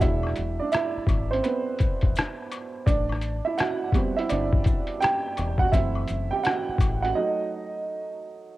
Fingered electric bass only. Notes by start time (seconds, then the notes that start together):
0.02 E1
0.39 E1
0.97 muted fingered electric bass stroke
1.07 G#1
2.03 E1
2.87 A1
4.31 G1
5.39 E1
5.73 F#1
6.10 F#1
6.69 muted fingered electric bass stroke
6.79 A1